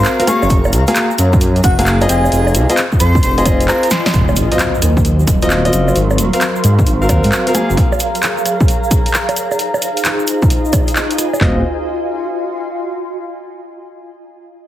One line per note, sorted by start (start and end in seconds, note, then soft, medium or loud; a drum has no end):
0.00 0.16 C4 loud
0.00 0.16 F#4 medium
0.00 1.02 F#4 medium
0.00 0.16 A#4 medium
0.00 0.16 F5 loud
0.00 2.94 F5 medium
0.00 2.94 A#5 medium
0.00 1.02 C6 medium
0.05 clap loud
0.05 shaker soft
0.19 0.26 C4 loud
0.19 0.26 F#4 medium
0.19 0.26 A#4 medium
0.19 0.26 F5 loud
0.19 closed hi-hat medium
0.19 shaker soft
0.27 0.42 A#3 loud
0.27 0.42 F#4 loud
0.27 0.42 G#4 loud
0.27 2.94 G#4 medium
0.27 0.42 F5 loud
0.27 0.37 C#6 medium
0.27 cross-stick medium
0.27 closed hi-hat loud
0.27 shaker medium
0.42 0.48 F#1 loud
0.42 0.47 C#6 medium
0.42 high bongo medium
0.42 shaker soft
0.50 0.74 F#1 loud
0.50 kick loud
0.50 closed hi-hat medium
0.50 shaker soft
0.64 high bongo medium
0.64 shaker soft
0.73 0.84 C#2 loud
0.73 closed hi-hat loud
0.73 shaker medium
0.87 1.04 A#3 medium
0.87 1.05 F#4 medium
0.87 1.05 G#4 medium
0.87 1.05 F5 loud
0.87 closed hi-hat medium
0.87 shaker soft
0.95 cross-stick soft
0.95 clap loud
0.95 closed hi-hat medium
0.95 shaker medium
1.11 shaker soft
1.18 1.61 F#2 medium
1.18 closed hi-hat loud
1.18 shaker medium
1.33 kick loud
1.33 shaker soft
1.41 closed hi-hat medium
1.41 shaker medium
1.56 closed hi-hat soft
1.56 shaker soft
1.64 2.06 F#1 loud
1.64 1.73 F#5 medium
1.64 kick loud
1.64 closed hi-hat loud
1.64 shaker medium
1.79 1.95 A#3 loud
1.79 1.95 F#4 medium
1.79 1.95 G#4 medium
1.79 1.95 F5 loud
1.79 1.84 F#5 medium
1.79 closed hi-hat medium
1.79 shaker soft
1.86 clap loud
1.86 shaker medium
2.01 2.66 C4 loud
2.01 2.66 F4 medium
2.01 2.66 G#4 medium
2.01 2.66 D#5 loud
2.01 closed hi-hat medium
2.01 high bongo medium
2.01 shaker soft
2.09 2.28 F1 medium
2.09 4.14 F4 medium
2.09 2.30 G#5 loud
2.09 closed hi-hat loud
2.09 shaker medium
2.24 high bongo medium
2.24 shaker soft
2.28 2.56 F1 loud
2.28 4.88 D#5 medium
2.28 2.48 G#5 medium
2.28 closed hi-hat medium
2.33 shaker medium
2.47 high bongo medium
2.47 shaker soft
2.55 2.66 C2 medium
2.55 closed hi-hat loud
2.55 shaker medium
2.69 2.77 C4 medium
2.69 2.77 F4 medium
2.69 2.77 G#4 medium
2.69 2.77 D#5 loud
2.69 4.80 G#5 medium
2.69 closed hi-hat medium
2.69 shaker soft
2.77 cross-stick soft
2.77 clap loud
2.77 closed hi-hat medium
2.77 shaker soft
2.92 kick medium
2.92 shaker soft
3.00 3.19 F2 medium
3.00 3.16 C6 medium
3.00 cross-stick medium
3.00 closed hi-hat loud
3.00 shaker medium
3.15 kick loud
3.15 shaker soft
3.23 3.69 F1 loud
3.23 3.33 C6 medium
3.23 closed hi-hat medium
3.23 shaker soft
3.38 3.44 C4 medium
3.38 3.44 F4 medium
3.38 3.44 G#4 medium
3.38 3.44 D#5 loud
3.38 3.43 C6 medium
3.38 closed hi-hat soft
3.38 shaker soft
3.46 3.61 C4 medium
3.46 3.61 F4 medium
3.46 3.61 G#4 medium
3.46 3.61 D#5 loud
3.46 kick loud
3.46 closed hi-hat loud
3.46 high bongo medium
3.46 shaker medium
3.60 closed hi-hat medium
3.60 shaker soft
3.68 3.83 C4 loud
3.68 3.83 F4 medium
3.68 3.83 G#4 medium
3.68 3.83 C5 loud
3.68 3.78 A#5 medium
3.68 clap loud
3.68 shaker medium
3.83 3.88 A#5 medium
3.83 closed hi-hat medium
3.83 shaker soft
3.90 4.01 C6 medium
3.90 snare medium
3.90 closed hi-hat loud
3.90 shaker medium
4.06 4.11 C6 medium
4.06 snare loud
4.06 high bongo medium
4.06 shaker soft
4.14 4.38 D#1 loud
4.14 7.52 F#3 medium
4.14 8.29 F#3 medium
4.14 9.33 A#4 medium
4.14 5.94 C5 medium
4.14 11.37 F5 medium
4.14 kick loud
4.14 closed hi-hat medium
4.14 impact medium
4.14 shaker soft
4.28 high bongo medium
4.28 shaker soft
4.36 4.48 A#1 medium
4.36 closed hi-hat loud
4.36 shaker medium
4.42 10.21 F5 medium
4.52 4.68 C4 medium
4.52 4.68 F4 medium
4.52 4.68 F#4 medium
4.52 4.68 D#5 loud
4.52 closed hi-hat medium
4.52 shaker soft
4.59 cross-stick soft
4.59 clap loud
4.59 closed hi-hat medium
4.59 shaker soft
4.75 shaker soft
4.82 5.24 D#2 medium
4.82 cross-stick medium
4.82 closed hi-hat loud
4.82 shaker medium
4.97 8.29 C6 loud
4.97 kick loud
4.97 shaker soft
5.05 closed hi-hat medium
5.05 shaker medium
5.20 shaker soft
5.27 5.70 D#1 loud
5.27 kick loud
5.27 closed hi-hat loud
5.27 shaker loud
5.42 5.59 C4 medium
5.42 5.59 F4 medium
5.42 5.59 F#4 medium
5.42 5.59 D#5 loud
5.42 closed hi-hat medium
5.42 shaker soft
5.50 clap loud
5.50 shaker soft
5.65 5.95 C4 medium
5.65 5.95 F4 medium
5.65 5.95 F#4 medium
5.65 5.95 D#5 loud
5.65 closed hi-hat medium
5.65 high bongo medium
5.65 shaker soft
5.73 5.92 F#1 medium
5.73 closed hi-hat loud
5.73 shaker medium
5.88 high bongo medium
5.88 shaker soft
5.95 6.20 G#1 loud
5.95 7.53 C5 medium
5.95 closed hi-hat medium
5.95 shaker soft
6.10 high bongo medium
6.10 shaker soft
6.18 6.29 D#1 medium
6.18 closed hi-hat loud
6.18 shaker loud
6.24 10.21 A#5 medium
6.33 6.41 C4 medium
6.33 6.41 F#4 medium
6.33 6.41 A#4 medium
6.33 6.41 F5 loud
6.33 closed hi-hat medium
6.33 shaker soft
6.41 cross-stick soft
6.41 clap loud
6.41 closed hi-hat medium
6.41 shaker medium
6.56 shaker soft
6.64 6.83 G#2 medium
6.64 closed hi-hat loud
6.64 shaker loud
6.79 kick loud
6.79 shaker soft
6.86 7.09 G#1 loud
6.86 closed hi-hat medium
6.86 shaker soft
7.02 7.08 C4 medium
7.02 7.08 F#4 medium
7.02 7.08 A#4 medium
7.02 7.08 F5 loud
7.02 shaker soft
7.09 7.20 D#2 medium
7.09 7.43 C4 loud
7.09 7.43 F#4 medium
7.09 7.44 A#4 medium
7.09 7.43 F5 loud
7.09 kick loud
7.09 closed hi-hat loud
7.09 high bongo medium
7.09 shaker loud
7.24 7.30 G#2 loud
7.24 closed hi-hat medium
7.24 shaker soft
7.32 clap loud
7.32 shaker medium
7.47 7.54 C4 medium
7.47 7.53 F#4 medium
7.47 7.54 A#4 medium
7.47 7.53 F5 loud
7.47 closed hi-hat medium
7.47 shaker soft
7.55 7.70 A#3 loud
7.55 7.70 F#4 medium
7.55 7.70 G#4 medium
7.55 9.35 G#4 medium
7.55 10.07 G#4 medium
7.55 9.35 C#5 medium
7.55 7.70 F5 loud
7.55 cross-stick medium
7.55 closed hi-hat loud
7.55 shaker loud
7.70 7.75 F#1 loud
7.70 shaker soft
7.77 kick loud
7.77 closed hi-hat medium
7.77 shaker soft
7.92 high bongo medium
7.92 shaker soft
8.00 closed hi-hat loud
8.00 shaker loud
8.15 closed hi-hat medium
8.15 shaker soft
8.22 cross-stick soft
8.22 clap loud
8.22 closed hi-hat medium
8.22 shaker medium
8.38 shaker soft
8.46 cross-stick medium
8.46 closed hi-hat loud
8.46 shaker medium
8.60 kick loud
8.60 shaker soft
8.68 closed hi-hat medium
8.68 shaker soft
8.84 shaker soft
8.91 kick loud
8.91 closed hi-hat loud
8.91 shaker loud
9.06 closed hi-hat medium
9.06 shaker soft
9.14 clap loud
9.14 shaker medium
9.29 closed hi-hat medium
9.29 high bongo medium
9.29 shaker soft
9.36 11.39 D#4 medium
9.36 11.41 F4 medium
9.36 11.39 G#4 medium
9.36 11.39 C5 medium
9.36 closed hi-hat loud
9.36 shaker medium
9.51 high bongo medium
9.51 shaker soft
9.56 11.41 D#5 medium
9.56 closed hi-hat medium
9.56 shaker medium
9.74 high bongo medium
9.74 shaker soft
9.82 closed hi-hat loud
9.82 shaker medium
9.97 closed hi-hat medium
9.97 shaker soft
10.05 cross-stick soft
10.05 clap loud
10.05 closed hi-hat medium
10.05 shaker medium
10.19 shaker soft
10.27 closed hi-hat loud
10.27 shaker loud
10.42 kick loud
10.42 shaker soft
10.50 closed hi-hat medium
10.50 shaker soft
10.65 shaker soft
10.73 kick loud
10.73 closed hi-hat medium
10.73 high bongo medium
10.73 shaker medium
10.88 closed hi-hat medium
10.88 shaker soft
10.96 clap loud
10.96 shaker medium
11.11 closed hi-hat medium
11.11 shaker soft
11.18 cross-stick medium
11.18 closed hi-hat medium
11.18 shaker medium
11.33 high bongo medium
11.33 shaker soft
11.41 11.62 D#1 loud
11.41 11.59 C4 medium
11.41 11.59 F4 medium
11.41 11.59 F#4 medium
11.41 13.19 F#4 medium
11.41 11.59 D#5 medium
11.41 kick loud
11.41 clap medium
11.41 floor tom loud
11.50 13.19 F5 medium
11.58 13.19 C6 medium